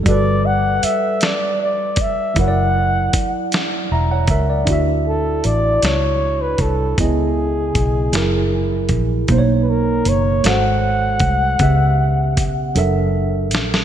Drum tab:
HH |x---x-x---x-|x---x-x---x-|x---x-x---x-|x---x-x---x-|
SD |------o-----|------o-----|------o-----|------o-----|
BD |o---------o-|o---o-----o-|o---------o-|o---o-----o-|

HH |x---x-x---x-|x---x-x---x-|
SD |------o-----|----------oo|
BD |o---------o-|o---o-------|